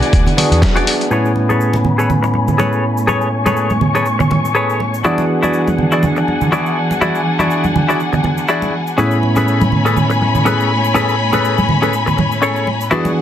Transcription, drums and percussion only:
0.03 closed hi-hat
0.13 kick, closed hi-hat
0.27 closed hi-hat, low conga
0.37 open hi-hat, muted conga, high conga, low conga
0.52 closed hi-hat
0.62 kick, snare, closed hi-hat
0.76 closed hi-hat, muted conga
0.87 open hi-hat
1.01 closed hi-hat
1.11 high conga, cabasa
1.25 cabasa
1.36 muted conga
1.50 high conga, cabasa
1.61 cabasa
1.73 muted conga, high conga, cabasa
1.85 low conga
1.99 cabasa
2.10 low conga, cabasa
2.23 muted conga, cabasa
2.34 high conga
2.48 low conga, cabasa
2.59 muted conga, cabasa
2.73 cabasa
2.97 cabasa
3.08 muted conga, high conga, cabasa
3.21 cabasa
3.46 muted conga, high conga, cabasa
3.57 cabasa
3.70 high conga, cabasa
3.81 low conga
3.95 muted conga, cabasa
4.06 cabasa
4.20 low conga, cabasa
4.31 muted conga, high conga, low conga
4.45 cabasa
4.55 cabasa
4.70 cabasa
4.80 muted conga
4.94 cabasa
5.04 high conga, cabasa
5.18 muted conga, cabasa
5.43 high conga, cabasa
5.53 cabasa
5.67 muted conga, high conga, cabasa
5.78 low conga
5.92 cabasa
6.03 muted conga, low conga, cabasa
6.16 cabasa
6.28 high conga
6.41 low conga, cabasa
6.52 muted conga, cabasa
6.66 cabasa
6.91 muted conga, cabasa
7.01 high conga, cabasa
7.15 cabasa
7.39 muted conga, high conga, cabasa
7.51 cabasa
7.64 high conga, cabasa
7.76 muted conga, low conga
7.90 cabasa
8.00 cabasa
8.13 low conga, cabasa
8.24 muted conga, high conga, low conga
8.38 cabasa
8.48 cabasa
8.62 muted conga, cabasa
8.87 cabasa
8.98 high conga, cabasa
9.11 cabasa
9.23 muted conga
9.36 high conga, cabasa
9.48 cabasa
9.61 muted conga, high conga, cabasa
9.72 low conga
9.86 cabasa
9.96 low conga, cabasa
10.10 muted conga, cabasa
10.22 high conga
10.35 low conga, cabasa
10.46 muted conga, cabasa
10.60 cabasa
10.84 cabasa
10.95 muted conga, high conga, cabasa
11.09 cabasa
11.33 muted conga, high conga, cabasa
11.45 cabasa
11.58 high conga, cabasa
11.69 low conga
11.83 muted conga, cabasa
11.93 cabasa
12.07 low conga, cabasa
12.18 muted conga, high conga, low conga
12.32 cabasa
12.42 cabasa
12.56 cabasa
12.67 muted conga
12.81 cabasa
12.91 high conga, cabasa
13.05 muted conga, cabasa

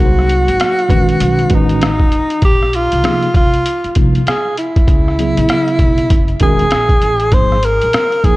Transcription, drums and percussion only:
0.19 cross-stick
0.29 closed hi-hat
0.48 closed hi-hat
0.60 cross-stick, closed hi-hat
0.79 closed hi-hat
0.90 kick, closed hi-hat
1.09 closed hi-hat
1.20 closed hi-hat
1.39 closed hi-hat
1.50 kick, closed hi-hat
1.69 closed hi-hat
1.82 cross-stick, closed hi-hat
2.00 kick
2.12 closed hi-hat
2.30 closed hi-hat
2.42 kick, closed hi-hat
2.63 cross-stick
2.73 closed hi-hat
2.92 closed hi-hat
3.04 cross-stick, closed hi-hat
3.23 closed hi-hat
3.34 kick, closed hi-hat
3.54 closed hi-hat
3.66 closed hi-hat
3.84 closed hi-hat
3.95 kick, closed hi-hat
4.15 closed hi-hat
4.27 cross-stick, closed hi-hat
4.57 closed hi-hat
4.76 kick, closed hi-hat
4.88 kick, closed hi-hat
5.08 cross-stick
5.19 closed hi-hat
5.37 closed hi-hat
5.49 cross-stick, closed hi-hat
5.68 closed hi-hat
5.79 kick, closed hi-hat
5.98 closed hi-hat
6.10 kick, closed hi-hat
6.28 closed hi-hat
6.40 kick, closed hi-hat
6.59 closed hi-hat
6.71 cross-stick, closed hi-hat
6.89 kick, closed hi-hat
7.02 closed hi-hat
7.20 closed hi-hat
7.32 kick, closed hi-hat
7.52 cross-stick
7.63 closed hi-hat
7.82 closed hi-hat
7.93 cross-stick, closed hi-hat
8.12 closed hi-hat
8.24 kick, closed hi-hat

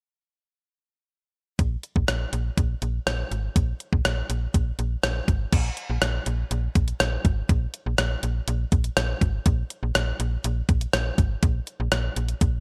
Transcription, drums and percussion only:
1.59 kick, closed hi-hat
1.83 closed hi-hat
1.96 kick
2.08 cross-stick, closed hi-hat
2.33 closed hi-hat
2.57 kick, closed hi-hat
2.82 closed hi-hat
3.07 cross-stick, closed hi-hat
3.32 closed hi-hat
3.56 kick, closed hi-hat
3.80 closed hi-hat
3.93 kick
4.05 cross-stick, closed hi-hat
4.30 closed hi-hat
4.54 kick, closed hi-hat
4.79 closed hi-hat
5.03 cross-stick, closed hi-hat
5.28 kick, closed hi-hat
5.52 kick, closed hi-hat, crash
5.77 closed hi-hat
6.02 cross-stick, closed hi-hat
6.26 closed hi-hat
6.51 closed hi-hat
6.75 kick, closed hi-hat
6.88 closed hi-hat
7.00 cross-stick, closed hi-hat
7.25 kick, closed hi-hat
7.49 kick, closed hi-hat
7.74 closed hi-hat
7.98 cross-stick, closed hi-hat
8.23 closed hi-hat
8.48 closed hi-hat
8.72 kick, closed hi-hat
8.84 closed hi-hat
8.97 cross-stick, closed hi-hat
9.21 kick, closed hi-hat
9.46 kick, closed hi-hat
9.70 closed hi-hat
9.95 cross-stick, closed hi-hat
10.20 closed hi-hat
10.44 closed hi-hat
10.69 kick, closed hi-hat
10.81 closed hi-hat
10.93 cross-stick, closed hi-hat
11.18 kick, closed hi-hat
11.43 kick, closed hi-hat
11.67 closed hi-hat
11.92 cross-stick, closed hi-hat
12.16 closed hi-hat
12.28 closed hi-hat
12.41 kick, closed hi-hat

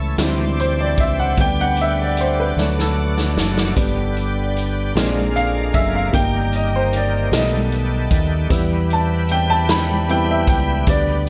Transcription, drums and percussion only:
0.18 snare, closed hi-hat
0.59 closed hi-hat
0.98 kick, closed hi-hat
1.37 kick, closed hi-hat
1.76 closed hi-hat
2.17 closed hi-hat
2.58 snare
2.79 snare
3.18 snare
3.37 snare
3.57 snare
3.77 kick, closed hi-hat
4.16 closed hi-hat
4.56 closed hi-hat
4.96 snare, closed hi-hat
5.36 closed hi-hat
5.74 kick, closed hi-hat
6.14 kick, closed hi-hat
6.53 closed hi-hat
6.93 closed hi-hat
7.33 snare, closed hi-hat
7.72 closed hi-hat
8.11 kick, closed hi-hat
8.50 kick, closed hi-hat
8.90 closed hi-hat
9.29 closed hi-hat
9.69 snare, closed hi-hat
10.09 closed hi-hat
10.47 kick, closed hi-hat
10.87 kick, closed hi-hat

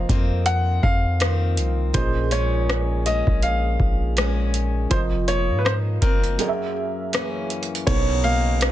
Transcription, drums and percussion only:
0.09 kick, closed hi-hat
0.46 closed hi-hat
0.83 kick
1.20 cross-stick, closed hi-hat
1.57 closed hi-hat
1.94 kick, closed hi-hat
2.31 closed hi-hat
2.70 cross-stick
3.06 closed hi-hat
3.27 kick
3.42 closed hi-hat
3.80 kick
4.17 cross-stick, closed hi-hat
4.54 closed hi-hat
4.91 kick, closed hi-hat
5.28 closed hi-hat
5.66 cross-stick
6.02 kick, closed hi-hat
6.24 closed hi-hat
6.39 closed hi-hat
7.13 cross-stick, closed hi-hat
7.50 closed hi-hat
7.63 closed hi-hat
7.75 closed hi-hat
7.87 kick, closed hi-hat, crash
8.61 cross-stick, closed hi-hat

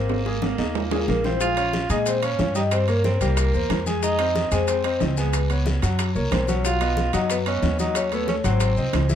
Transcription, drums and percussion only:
0.09 high bongo, high conga, high timbale, long guiro
0.25 high bongo, high conga
0.42 low bongo, high conga, high timbale, short guiro
0.58 high timbale, short guiro
0.75 high conga, low timbale, long guiro
0.91 low bongo, high conga, low timbale
1.08 low bongo, high conga, low timbale, short guiro
1.24 low bongo, high conga, low timbale, short guiro
1.41 high bongo, long guiro, maracas
1.57 high bongo, high conga, high timbale, maracas
1.73 high bongo, high conga, low timbale, short guiro, maracas
1.89 high bongo, high timbale, short guiro, maracas
2.06 high bongo, high conga, high timbale, long guiro, maracas
2.23 high conga, high timbale, maracas
2.39 high bongo, low bongo, high conga, low timbale, short guiro, maracas
2.55 high bongo, short guiro, maracas
2.71 high bongo, high conga, high timbale, long guiro, maracas
2.88 high bongo, high conga, high timbale, maracas
3.04 high bongo, high conga, low timbale, short guiro, maracas
3.21 high bongo, high timbale, short guiro, maracas
3.37 high bongo, high conga, high timbale, long guiro, maracas
3.54 high conga, maracas
3.70 high bongo, low bongo, high conga, high timbale, low timbale, short guiro, maracas
3.86 high bongo, high conga, short guiro, maracas
4.03 high bongo, high conga, long guiro, maracas
4.19 high bongo, high conga, high timbale, maracas
4.35 high bongo, high conga, low timbale, short guiro, maracas
4.52 high bongo, high conga, high timbale, short guiro, maracas
4.68 high bongo, high conga, high timbale, long guiro, maracas
4.84 high conga, high timbale, maracas
5.00 high bongo, low bongo, high conga, low timbale, short guiro, maracas
5.17 high bongo, short guiro, maracas
5.33 high bongo, high conga, high timbale, long guiro, maracas
5.49 high bongo, high conga, high timbale, maracas
5.66 high bongo, high conga, low timbale, short guiro, maracas
5.82 high bongo, high timbale, short guiro, maracas
5.99 high bongo, high conga, high timbale, long guiro, maracas
6.15 high conga, maracas
6.31 high bongo, low bongo, high conga, high timbale, low timbale, short guiro, maracas
6.47 high bongo, high conga, short guiro, maracas
6.64 high bongo, high conga, long guiro, maracas
6.80 high bongo, high conga, high timbale, maracas
6.97 high bongo, high conga, low timbale, short guiro, maracas
7.13 high bongo, high conga, high timbale, short guiro, maracas
7.29 high bongo, high conga, high timbale, long guiro, maracas
7.46 high conga, high timbale, maracas
7.62 high bongo, low bongo, high conga, low timbale, short guiro, maracas
7.79 high bongo, high conga, short guiro, maracas
7.95 high bongo, high conga, high timbale, long guiro, maracas
8.11 high bongo, high conga, high timbale, maracas
8.28 high bongo, high conga, low timbale, short guiro, maracas
8.44 high bongo, high timbale, short guiro, maracas
8.60 high bongo, high conga, high timbale, long guiro, maracas
8.77 high conga, maracas
8.93 high bongo, low bongo, high conga, high timbale, low timbale, short guiro, maracas
9.09 high bongo, high conga, short guiro, maracas

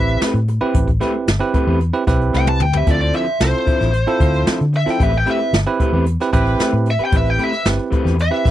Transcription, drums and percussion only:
0.08 closed hi-hat
0.21 snare, closed hi-hat
0.34 closed hi-hat
0.48 closed hi-hat
0.74 kick, closed hi-hat
0.87 kick, closed hi-hat
1.01 snare, closed hi-hat
1.28 snare, closed hi-hat
1.54 kick, closed hi-hat
1.81 closed hi-hat
1.94 closed hi-hat
2.07 kick, snare, closed hi-hat
2.21 closed hi-hat
2.34 snare
2.47 high tom
2.60 mid tom
2.73 floor tom
2.87 kick, closed hi-hat
3.01 closed hi-hat
3.13 closed hi-hat
3.40 snare, closed hi-hat
3.54 closed hi-hat
3.67 kick, closed hi-hat
3.80 snare, closed hi-hat
3.94 closed hi-hat
4.20 kick, closed hi-hat
4.34 closed hi-hat
4.47 snare, closed hi-hat
4.61 closed hi-hat
4.73 closed hi-hat
4.88 snare
5.00 kick, closed hi-hat
5.13 closed hi-hat
5.26 closed hi-hat
5.53 snare, closed hi-hat
5.80 kick, closed hi-hat
6.06 closed hi-hat
6.20 snare, closed hi-hat
6.33 kick, closed hi-hat
6.47 closed hi-hat
6.59 snare, closed hi-hat
6.86 closed hi-hat
6.99 closed hi-hat
7.12 kick, closed hi-hat
7.26 closed hi-hat
7.39 closed hi-hat
7.52 snare
7.65 snare, closed hi-hat
7.79 closed hi-hat
7.92 kick, closed hi-hat
8.06 snare, closed hi-hat
8.19 closed hi-hat
8.45 kick, snare, closed hi-hat

